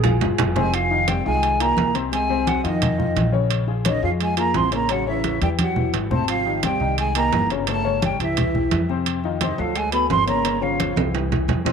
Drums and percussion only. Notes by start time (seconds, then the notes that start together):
0.04 low conga, low timbale, low agogo
0.21 low conga, low timbale
0.38 low conga, low timbale, low agogo
0.56 low conga, low timbale
0.74 high conga, high timbale
0.91 high conga
1.08 high conga, high timbale, low timbale
1.26 high conga
1.43 high conga, high timbale
1.60 high conga, high timbale
1.77 high conga, low timbale
1.94 high conga, high timbale
2.12 high conga, high timbale
2.29 high conga
2.47 high conga, high timbale, low timbale
2.65 high conga, high timbale
2.82 high conga, low conga, high timbale
3.00 high conga, low conga
3.17 high conga, high timbale, low timbale
3.34 high conga
3.51 high conga, high timbale
3.68 high conga
3.85 high conga, high timbale, low timbale
4.03 high conga
4.21 high conga, high timbale
4.37 high conga, high timbale
4.54 high conga, low timbale
4.72 high timbale
4.89 high conga, high timbale
5.07 high conga
5.24 high conga, high timbale, low timbale
5.42 high conga, high timbale
5.59 high conga, high timbale
5.76 low conga
5.94 high timbale, low timbale
6.11 low conga
6.28 high conga, high timbale
6.46 high conga
6.63 high conga, high timbale, low timbale
6.81 high conga
6.98 high conga, high timbale
7.15 high conga, high timbale
7.32 high conga, low timbale
7.50 high conga, high timbale
7.67 high conga, high timbale
7.85 high conga
8.02 high conga, high timbale, low timbale
8.20 high conga, high timbale
8.37 high conga, low conga, high timbale
8.55 high conga, low conga
8.71 high conga, high timbale, low timbale
8.89 high conga
9.06 high conga, high timbale
9.24 high conga
9.41 high conga, high timbale, low timbale
9.58 high conga
9.76 high conga, high timbale
9.92 high conga, high timbale
10.10 high conga, low timbale
10.28 high conga, high timbale
10.45 high conga, high timbale
10.63 high conga
10.80 high conga, high timbale, low timbale
10.97 high conga, high timbale
11.15 low timbale
11.32 low conga, low timbale
11.49 low conga, low timbale
11.65 low conga, low timbale